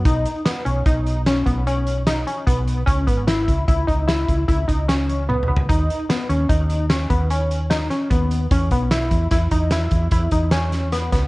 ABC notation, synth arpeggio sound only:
X:1
M:7/4
L:1/8
Q:1/4=149
K:Bmix
V:1 name="Synth arpeggio sound"
D2 B, C D2 C B, C2 D C B,2 | C B, E2 E D E2 E D C2 B, B, | D2 B, C D2 C B, C2 D C B,2 | C B, E2 E D E2 E D C2 B, B, |]